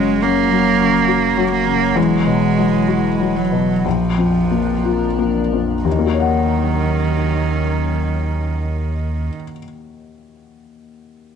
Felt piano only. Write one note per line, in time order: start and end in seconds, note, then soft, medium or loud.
0.00 0.18 F#2 soft
0.00 0.79 C#3 soft
0.00 0.51 F#3 soft
0.00 1.08 F#4 soft
0.22 1.93 F#2 soft
0.51 0.97 F#3 soft
0.79 1.26 C#3 soft
1.08 1.55 F#4 soft
1.37 1.85 F#3 soft
1.66 1.96 C#3 soft
1.96 3.80 E2 soft
2.27 2.76 B2 soft
2.58 3.08 F#3 soft
2.88 3.39 F#4 soft
3.20 3.71 F#3 soft
3.52 3.85 B2 soft
3.85 5.82 A#1 soft
4.17 4.71 F2 soft
4.51 5.05 A#3 soft
4.85 5.39 F4 soft
5.18 5.72 A#3 soft
5.53 5.86 F2 soft
5.85 9.29 D#2 soft
5.92 9.36 D#3 soft
5.99 9.43 A#3 soft
6.05 9.50 F#4 soft
6.13 9.57 C#5 soft
6.20 9.64 F#5 soft